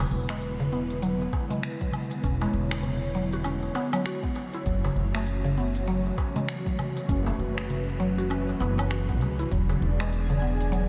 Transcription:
Already playing: analog synth pad D3 G#3 B3 E4 B4
0.00 synth pluck C#3
0.11 upright bass E1, closed hi-hat
0.29 synth pluck G#3, finger snap, closed hi-hat, darbuka tek, cabasa
0.42 closed hi-hat, cabasa
0.60 synth pluck C#3, cabasa
0.73 synth pluck B3
0.90 closed hi-hat, cabasa
1.02 synth pluck F#3, closed hi-hat, cabasa
1.21 darbuka tek, cabasa
1.33 kick, darbuka ka, darbuka tek
1.50 synth pluck G#3, closed hi-hat, darbuka dum, cabasa
1.63 finger snap, closed hi-hat, cabasa
1.81 synth pluck F#3, kick, cabasa
1.92 closed hi-hat, darbuka dum, low woodblock
2.11 closed hi-hat, darbuka ka, cabasa
2.22 upright bass E1, synth pluck C#4, analog synth pad C#5, kick, closed hi-hat, cabasa
2.41 synth pluck G#3, darbuka ka, darbuka tek, cabasa
2.54 upright bass E1, closed hi-hat
2.71 finger snap, closed hi-hat, darbuka tek, cabasa
2.83 closed hi-hat, darbuka dum, cabasa
3.02 cabasa
3.15 synth pluck F#3
3.33 synth pluck F#4, closed hi-hat, cabasa
3.44 synth pluck C#4, closed hi-hat, cabasa, low woodblock
3.63 darbuka ka, cabasa
3.75 synth pluck B3, darbuka ka, darbuka tek
3.93 synth pluck F#3, closed hi-hat, darbuka ka, cabasa, low woodblock
4.06 synth pluck F#4, finger snap, closed hi-hat, cabasa
4.23 synth pluck B3, kick, cabasa
4.35 closed hi-hat, darbuka tek
4.54 synth pluck E4, closed hi-hat, cabasa
4.66 upright bass F#1, analog synth pad E3 A3 C#4 F#4, synth pluck F#3, kick, closed hi-hat, cabasa
4.84 synth pluck C#3, darbuka ka, darbuka tek, cabasa
4.96 upright bass F#1, closed hi-hat
5.15 synth pluck A3, finger snap, closed hi-hat, darbuka tek, cabasa
5.27 closed hi-hat, cabasa
5.44 synth pluck C#3, cabasa
5.58 synth pluck B3
5.75 closed hi-hat, cabasa
5.88 synth pluck F#3, closed hi-hat, cabasa
6.06 darbuka tek, cabasa
6.18 kick, darbuka ka, darbuka tek
6.36 synth pluck G#3, closed hi-hat, darbuka dum, cabasa
6.49 finger snap, closed hi-hat, cabasa
6.66 synth pluck F#3, kick, cabasa
6.79 closed hi-hat, darbuka dum, low woodblock
6.97 closed hi-hat, darbuka ka, cabasa
7.08 upright bass F#1, synth pluck C#4, analog synth pad B4, kick, closed hi-hat, cabasa
7.26 synth pluck A3, darbuka ka, darbuka tek, cabasa
7.39 upright bass F#1, closed hi-hat
7.57 finger snap, closed hi-hat, darbuka tek, cabasa
7.70 closed hi-hat, darbuka dum, cabasa
7.88 cabasa
8.00 synth pluck F#3
8.18 synth pluck F#4, closed hi-hat, cabasa
8.30 synth pluck C#4, closed hi-hat, cabasa, low woodblock
8.49 darbuka ka, cabasa
8.60 upright bass F#1, synth pluck B3, darbuka ka, darbuka tek
8.78 synth pluck F#3, closed hi-hat, darbuka ka, cabasa, low woodblock
8.90 synth pluck F#4, finger snap, closed hi-hat, cabasa
9.09 synth pluck B3, kick, cabasa
9.21 upright bass C#2, closed hi-hat, darbuka tek
9.39 synth pluck E4, closed hi-hat, cabasa
9.51 upright bass E1, synth pluck F#3, analog synth pad B3 D4 G#4 D5, synth texture G#5, kick, closed hi-hat, cabasa
9.69 synth pluck C#3, darbuka ka, darbuka tek, cabasa
9.81 upright bass E1, closed hi-hat
10.00 synth pluck G#3, finger snap, closed hi-hat, darbuka tek, cabasa
10.13 closed hi-hat, cabasa
10.30 synth pluck C#3, cabasa
10.42 synth pluck B3
10.61 closed hi-hat, cabasa
10.72 synth pluck F#3, closed hi-hat, cabasa

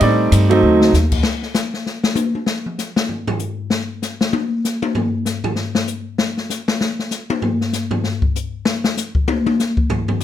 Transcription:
0.01 upright bass A2, grand piano G3 A3 C4 D#4 D5, ride
0.32 upright bass G2, hi-hat pedal, ride
0.49 grand piano F#3 A3 C4 D#4, ride
0.63 upright bass D2
0.81 snare
0.93 upright bass D#2, snare, hi-hat pedal
1.12 kick, crash
1.23 snare
1.42 snare
1.55 snare, hi-hat pedal
1.74 snare
1.86 snare
2.04 snare
2.15 hi-hat pedal, high tom
2.35 high tom
2.46 snare
2.66 mid tom
2.78 snare, hi-hat pedal
2.96 snare
3.09 floor tom
3.27 floor tom
3.39 hi-hat pedal
3.70 snare
4.02 snare, hi-hat pedal
4.21 snare
4.33 high tom
4.65 snare, hi-hat pedal
4.82 high tom
4.95 floor tom
5.25 snare, hi-hat pedal
5.44 floor tom
5.56 snare
5.75 snare
5.88 hi-hat pedal
6.18 snare
6.37 snare
6.50 snare, hi-hat pedal
6.68 snare
6.81 snare
6.99 snare
7.11 snare, hi-hat pedal
7.30 high tom
7.42 floor tom
7.61 snare
7.73 snare, hi-hat pedal
7.91 floor tom
8.04 snare
8.22 kick
8.36 hi-hat pedal
8.65 snare
8.84 snare
8.97 snare, hi-hat pedal
9.15 kick
9.28 high tom
9.46 high tom
9.59 snare, hi-hat pedal
9.77 kick
9.90 floor tom
10.08 floor tom
10.20 floor tom, hi-hat pedal

